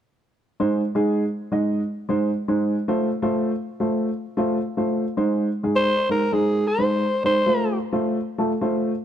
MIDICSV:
0, 0, Header, 1, 3, 480
1, 0, Start_track
1, 0, Tempo, 571429
1, 509, Time_signature, 4, 2, 24, 8
1, 7600, End_track
2, 0, Start_track
2, 0, Title_t, "Alto saxophone"
2, 0, Program_c, 0, 65
2, 4838, Note_on_c, 0, 72, 115
2, 5105, Note_off_c, 0, 72, 0
2, 5133, Note_on_c, 0, 70, 90
2, 5319, Note_on_c, 0, 68, 90
2, 5332, Note_off_c, 0, 70, 0
2, 5611, Note_on_c, 0, 72, 95
2, 5623, Note_off_c, 0, 68, 0
2, 6086, Note_off_c, 0, 72, 0
2, 6095, Note_on_c, 0, 72, 96
2, 6535, Note_off_c, 0, 72, 0
2, 7600, End_track
3, 0, Start_track
3, 0, Title_t, "Upright piano"
3, 0, Program_c, 1, 0
3, 502, Note_on_c, 1, 56, 80
3, 504, Note_on_c, 1, 63, 76
3, 506, Note_on_c, 1, 72, 92
3, 670, Note_off_c, 1, 56, 0
3, 671, Note_off_c, 1, 63, 0
3, 672, Note_off_c, 1, 72, 0
3, 797, Note_on_c, 1, 56, 80
3, 800, Note_on_c, 1, 63, 76
3, 804, Note_on_c, 1, 68, 92
3, 1028, Note_off_c, 1, 56, 0
3, 1029, Note_off_c, 1, 63, 0
3, 1031, Note_off_c, 1, 68, 0
3, 1274, Note_on_c, 1, 56, 71
3, 1274, Note_on_c, 1, 63, 68
3, 1280, Note_on_c, 1, 75, 78
3, 1507, Note_off_c, 1, 56, 0
3, 1507, Note_off_c, 1, 63, 0
3, 1510, Note_off_c, 1, 75, 0
3, 1753, Note_on_c, 1, 56, 80
3, 1758, Note_on_c, 1, 63, 74
3, 1759, Note_on_c, 1, 72, 93
3, 1919, Note_off_c, 1, 56, 0
3, 1921, Note_off_c, 1, 63, 0
3, 1922, Note_off_c, 1, 72, 0
3, 2085, Note_on_c, 1, 56, 80
3, 2086, Note_on_c, 1, 63, 75
3, 2089, Note_on_c, 1, 72, 78
3, 2302, Note_off_c, 1, 56, 0
3, 2303, Note_off_c, 1, 63, 0
3, 2304, Note_off_c, 1, 72, 0
3, 2420, Note_on_c, 1, 57, 85
3, 2424, Note_on_c, 1, 65, 80
3, 2425, Note_on_c, 1, 72, 91
3, 2590, Note_off_c, 1, 57, 0
3, 2592, Note_off_c, 1, 65, 0
3, 2593, Note_off_c, 1, 72, 0
3, 2707, Note_on_c, 1, 57, 87
3, 2707, Note_on_c, 1, 65, 72
3, 2710, Note_on_c, 1, 72, 89
3, 2944, Note_off_c, 1, 57, 0
3, 2944, Note_off_c, 1, 65, 0
3, 2945, Note_off_c, 1, 72, 0
3, 3192, Note_on_c, 1, 57, 75
3, 3192, Note_on_c, 1, 65, 58
3, 3195, Note_on_c, 1, 72, 75
3, 3427, Note_off_c, 1, 57, 0
3, 3427, Note_off_c, 1, 65, 0
3, 3428, Note_off_c, 1, 72, 0
3, 3671, Note_on_c, 1, 57, 85
3, 3675, Note_on_c, 1, 65, 81
3, 3678, Note_on_c, 1, 72, 87
3, 3838, Note_off_c, 1, 57, 0
3, 3840, Note_off_c, 1, 65, 0
3, 3842, Note_off_c, 1, 72, 0
3, 4007, Note_on_c, 1, 57, 70
3, 4011, Note_on_c, 1, 65, 69
3, 4014, Note_on_c, 1, 72, 75
3, 4224, Note_off_c, 1, 57, 0
3, 4226, Note_off_c, 1, 65, 0
3, 4227, Note_off_c, 1, 72, 0
3, 4343, Note_on_c, 1, 56, 82
3, 4344, Note_on_c, 1, 63, 75
3, 4347, Note_on_c, 1, 72, 88
3, 4594, Note_off_c, 1, 56, 0
3, 4595, Note_off_c, 1, 63, 0
3, 4596, Note_off_c, 1, 72, 0
3, 4731, Note_on_c, 1, 56, 60
3, 4736, Note_on_c, 1, 63, 55
3, 4737, Note_on_c, 1, 68, 74
3, 4931, Note_off_c, 1, 56, 0
3, 4933, Note_off_c, 1, 63, 0
3, 4934, Note_off_c, 1, 68, 0
3, 5118, Note_on_c, 1, 56, 61
3, 5120, Note_on_c, 1, 63, 56
3, 5121, Note_on_c, 1, 72, 66
3, 5228, Note_off_c, 1, 56, 0
3, 5229, Note_off_c, 1, 63, 0
3, 5229, Note_off_c, 1, 72, 0
3, 5310, Note_on_c, 1, 56, 62
3, 5313, Note_on_c, 1, 63, 62
3, 5319, Note_on_c, 1, 72, 65
3, 5558, Note_off_c, 1, 56, 0
3, 5560, Note_off_c, 1, 63, 0
3, 5562, Note_off_c, 1, 72, 0
3, 5699, Note_on_c, 1, 56, 66
3, 5701, Note_on_c, 1, 63, 59
3, 5703, Note_on_c, 1, 72, 73
3, 5895, Note_off_c, 1, 56, 0
3, 5896, Note_off_c, 1, 63, 0
3, 5897, Note_off_c, 1, 72, 0
3, 6081, Note_on_c, 1, 56, 60
3, 6083, Note_on_c, 1, 63, 62
3, 6084, Note_on_c, 1, 72, 74
3, 6190, Note_off_c, 1, 56, 0
3, 6191, Note_off_c, 1, 63, 0
3, 6191, Note_off_c, 1, 72, 0
3, 6269, Note_on_c, 1, 57, 72
3, 6272, Note_on_c, 1, 65, 68
3, 6274, Note_on_c, 1, 72, 73
3, 6517, Note_off_c, 1, 57, 0
3, 6519, Note_off_c, 1, 65, 0
3, 6520, Note_off_c, 1, 72, 0
3, 6657, Note_on_c, 1, 57, 83
3, 6658, Note_on_c, 1, 65, 71
3, 6662, Note_on_c, 1, 72, 76
3, 6854, Note_off_c, 1, 57, 0
3, 6855, Note_off_c, 1, 65, 0
3, 6857, Note_off_c, 1, 72, 0
3, 7042, Note_on_c, 1, 57, 79
3, 7045, Note_on_c, 1, 65, 71
3, 7048, Note_on_c, 1, 69, 81
3, 7150, Note_off_c, 1, 57, 0
3, 7152, Note_off_c, 1, 65, 0
3, 7153, Note_off_c, 1, 69, 0
3, 7235, Note_on_c, 1, 57, 80
3, 7237, Note_on_c, 1, 65, 73
3, 7241, Note_on_c, 1, 72, 82
3, 7480, Note_off_c, 1, 57, 0
3, 7482, Note_off_c, 1, 65, 0
3, 7483, Note_off_c, 1, 72, 0
3, 7600, End_track
0, 0, End_of_file